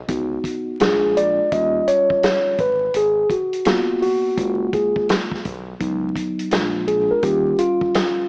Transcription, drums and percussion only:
0.09 kick loud
0.09 closed hi-hat medium
0.44 kick medium
0.44 closed hi-hat medium
0.80 snare loud
0.80 closed hi-hat medium
1.17 closed hi-hat medium
1.52 kick medium
1.52 closed hi-hat medium
1.88 closed hi-hat medium
2.10 kick medium
2.23 snare loud
2.23 closed hi-hat medium
2.58 kick loud
2.58 closed hi-hat medium
2.94 closed hi-hat medium
3.30 kick medium
3.30 closed hi-hat medium
3.53 closed hi-hat soft
3.65 snare loud
3.65 closed hi-hat medium
4.02 open hi-hat soft
4.38 kick medium
4.38 closed hi-hat medium
4.73 kick medium
4.73 closed hi-hat medium
4.96 kick medium
5.09 snare loud
5.09 closed hi-hat medium
5.31 kick medium
5.31 snare soft
5.45 kick medium
5.45 closed hi-hat medium
5.80 kick loud
5.80 closed hi-hat medium
6.16 kick medium
6.16 closed hi-hat medium
6.39 closed hi-hat soft
6.51 snare loud
6.51 closed hi-hat medium
6.88 closed hi-hat medium
7.23 kick medium
7.23 closed hi-hat medium
7.59 closed hi-hat medium
7.81 kick medium
7.95 snare loud
7.95 closed hi-hat medium

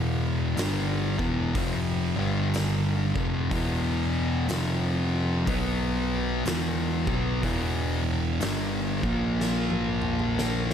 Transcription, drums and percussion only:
0.57 snare loud
0.57 open hi-hat medium
1.19 kick medium
1.55 kick loud
1.55 open hi-hat medium
2.54 snare loud
2.54 open hi-hat medium
3.16 kick loud
3.51 kick loud
3.51 open hi-hat medium
4.49 snare loud
4.49 open hi-hat medium
5.47 kick loud
5.47 open hi-hat medium
6.46 snare loud
6.46 open hi-hat medium
7.07 kick loud
7.43 kick medium
7.43 open hi-hat medium
8.41 snare loud
8.41 open hi-hat medium
9.03 kick loud
9.41 snare medium
9.70 high tom medium
10.02 mid tom medium
10.19 mid tom medium
10.39 snare medium

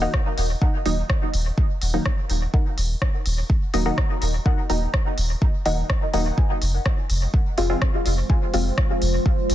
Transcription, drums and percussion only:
0.14 kick medium
0.14 cross-stick medium
0.38 open hi-hat medium
0.62 kick loud
0.86 open hi-hat medium
1.10 kick loud
1.10 cross-stick medium
1.34 open hi-hat medium
1.58 kick loud
1.82 open hi-hat medium
2.06 kick loud
2.06 cross-stick medium
2.30 open hi-hat medium
2.54 kick loud
2.78 open hi-hat medium
3.02 kick loud
3.02 cross-stick medium
3.26 open hi-hat medium
3.50 kick loud
3.74 open hi-hat medium
3.98 kick loud
3.98 cross-stick medium
4.22 open hi-hat medium
4.46 kick loud
4.70 open hi-hat medium
4.94 kick loud
4.94 cross-stick medium
5.18 open hi-hat medium
5.42 kick loud
5.66 open hi-hat medium
5.90 kick loud
5.90 cross-stick medium
6.14 open hi-hat medium
6.38 kick loud
6.62 open hi-hat medium
6.86 kick loud
6.86 cross-stick medium
7.10 open hi-hat medium
7.34 kick loud
7.58 open hi-hat medium
7.82 kick loud
7.82 cross-stick medium
8.06 open hi-hat medium
8.30 kick loud
8.54 open hi-hat medium
8.78 kick loud
8.78 cross-stick medium
9.02 open hi-hat medium
9.26 kick loud
9.50 open hi-hat medium

